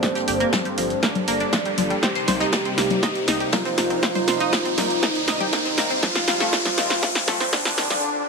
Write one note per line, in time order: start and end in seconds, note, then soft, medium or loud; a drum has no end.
0.00 8.03 G2 medium
0.00 5.99 G3 medium
0.00 0.09 G3 medium
0.00 1.99 A#3 medium
0.00 2.84 A#3 medium
0.00 1.99 D4 medium
0.00 3.54 G4 medium
0.00 1.99 A4 medium
0.00 1.04 C5 loud
0.00 2.03 A5 medium
0.00 kick loud
0.00 snare medium
0.00 closed hi-hat medium
0.00 riser medium
0.15 0.21 G4 medium
0.15 snare soft
0.15 closed hi-hat soft
0.28 0.44 G1 loud
0.28 0.34 G4 medium
0.28 closed hi-hat medium
0.28 open hi-hat loud
0.40 0.49 A#3 loud
0.40 closed hi-hat soft
0.53 kick loud
0.53 snare loud
0.53 snare medium
0.53 closed hi-hat medium
0.53 low conga medium
0.65 0.71 G3 medium
0.65 closed hi-hat soft
0.78 0.94 G1 medium
0.78 0.87 F3 medium
0.78 closed hi-hat medium
0.78 open hi-hat loud
0.90 closed hi-hat soft
1.03 1.09 A#3 medium
1.03 1.93 D5 loud
1.03 kick loud
1.03 snare medium
1.03 closed hi-hat medium
1.15 closed hi-hat soft
1.15 low conga medium
1.28 1.44 G1 medium
1.28 1.31 A#3 loud
1.28 closed hi-hat medium
1.28 open hi-hat loud
1.40 1.46 D4 medium
1.40 closed hi-hat soft
1.53 1.56 F3 medium
1.53 kick loud
1.53 snare loud
1.53 snare medium
1.53 closed hi-hat medium
1.65 1.69 G3 medium
1.65 closed hi-hat soft
1.78 1.94 G1 medium
1.78 1.87 F3 medium
1.78 closed hi-hat medium
1.78 open hi-hat loud
1.78 low conga medium
1.90 1.94 G3 medium
1.90 closed hi-hat soft
2.03 5.99 C3 medium
2.03 5.99 A#3 medium
2.03 2.09 C4 medium
2.03 6.85 D#4 medium
2.03 5.99 D#4 medium
2.03 3.43 G4 loud
2.03 kick loud
2.03 snare medium
2.03 closed hi-hat medium
2.15 2.21 C5 medium
2.15 snare soft
2.15 closed hi-hat soft
2.24 2.44 C2 loud
2.24 8.03 C5 medium
2.24 2.34 C5 medium
2.24 snare medium
2.24 closed hi-hat medium
2.24 open hi-hat loud
2.24 low conga medium
2.40 2.49 D#4 loud
2.40 snare medium
2.40 closed hi-hat soft
2.52 kick loud
2.52 snare loud
2.52 snare medium
2.52 closed hi-hat medium
2.65 2.71 C4 medium
2.65 closed hi-hat soft
2.78 2.94 C2 medium
2.78 2.87 A#3 medium
2.78 snare medium
2.78 closed hi-hat medium
2.78 open hi-hat loud
2.90 closed hi-hat soft
2.90 low conga medium
3.00 3.09 D#4 medium
3.00 7.08 A#5 medium
3.00 kick loud
3.00 snare medium
3.00 closed hi-hat medium
3.15 closed hi-hat soft
3.28 3.44 C2 loud
3.28 3.31 D#4 loud
3.28 snare medium
3.28 closed hi-hat medium
3.28 open hi-hat loud
3.40 3.46 G4 medium
3.40 closed hi-hat soft
3.52 3.57 A#3 medium
3.52 5.04 F4 loud
3.52 kick loud
3.52 snare loud
3.52 snare medium
3.52 closed hi-hat medium
3.52 low conga medium
3.65 3.69 C4 medium
3.65 snare soft
3.65 closed hi-hat soft
3.78 3.94 C2 medium
3.78 3.87 A#3 medium
3.78 snare medium
3.78 snare soft
3.78 closed hi-hat medium
3.78 open hi-hat loud
3.90 3.94 C4 medium
3.90 closed hi-hat soft
4.03 4.09 C4 medium
4.03 kick loud
4.03 snare medium
4.03 closed hi-hat medium
4.15 4.21 C5 medium
4.15 snare soft
4.15 closed hi-hat soft
4.15 low conga loud
4.27 4.44 C2 loud
4.27 4.34 C5 medium
4.27 snare medium
4.27 closed hi-hat medium
4.27 open hi-hat loud
4.40 4.49 D#4 loud
4.40 closed hi-hat soft
4.53 kick loud
4.53 snare loud
4.53 snare medium
4.53 closed hi-hat medium
4.65 4.71 C4 medium
4.65 closed hi-hat soft
4.78 4.94 C2 medium
4.78 4.87 A#3 medium
4.78 snare medium
4.78 closed hi-hat medium
4.78 open hi-hat loud
4.78 low conga medium
4.90 closed hi-hat soft
5.03 5.93 D#4 loud
5.03 5.09 D#4 medium
5.03 kick loud
5.03 snare medium
5.03 closed hi-hat medium
5.15 closed hi-hat soft
5.27 5.44 C2 loud
5.27 5.31 D#4 loud
5.27 snare medium
5.27 closed hi-hat medium
5.27 open hi-hat loud
5.40 5.46 G4 medium
5.40 closed hi-hat soft
5.40 low conga medium
5.52 5.57 A#3 medium
5.52 kick loud
5.52 snare loud
5.52 snare medium
5.52 closed hi-hat medium
5.65 5.69 C4 medium
5.65 closed hi-hat soft
5.78 5.94 C2 medium
5.78 5.87 A#3 medium
5.78 snare medium
5.78 closed hi-hat medium
5.78 open hi-hat loud
5.90 5.94 C4 medium
5.90 closed hi-hat soft
6.03 6.09 F3 medium
6.03 8.01 F3 medium
6.03 8.01 G3 medium
6.03 8.01 C4 medium
6.03 8.03 F4 medium
6.03 7.43 F4 loud
6.03 kick loud
6.03 snare medium
6.03 closed hi-hat medium
6.03 low conga medium
6.15 6.21 F4 medium
6.15 snare medium
6.15 closed hi-hat soft
6.28 6.44 F1 loud
6.28 6.34 F4 medium
6.28 snare medium
6.28 closed hi-hat medium
6.28 open hi-hat medium
6.40 6.49 A3 loud
6.40 snare medium
6.40 closed hi-hat soft
6.53 kick loud
6.53 snare medium
6.53 snare loud
6.53 closed hi-hat medium
6.65 6.71 F3 medium
6.65 snare medium
6.65 closed hi-hat soft
6.65 low conga medium
6.78 6.94 F1 medium
6.78 6.87 D#3 medium
6.78 8.03 G5 medium
6.78 snare medium
6.78 closed hi-hat medium
6.78 open hi-hat loud
6.90 snare medium
6.90 closed hi-hat soft
7.02 7.09 A3 medium
7.02 kick loud
7.02 snare loud
7.02 closed hi-hat medium
7.15 snare medium
7.15 closed hi-hat soft
7.28 7.44 F1 loud
7.28 7.31 A3 loud
7.28 snare loud
7.28 closed hi-hat medium
7.28 open hi-hat loud
7.28 low conga medium
7.40 7.46 C4 medium
7.40 snare medium
7.40 closed hi-hat soft
7.53 7.56 D#3 medium
7.53 8.29 D4 loud
7.53 kick loud
7.53 snare loud
7.53 closed hi-hat medium
7.65 7.69 F3 medium
7.65 snare soft
7.65 snare medium
7.65 closed hi-hat soft
7.78 7.94 F1 medium
7.78 7.87 D#3 medium
7.78 snare loud
7.78 snare soft
7.78 closed hi-hat medium
7.78 open hi-hat loud
7.90 7.94 F3 medium
7.90 snare medium
7.90 closed hi-hat soft
7.90 low conga medium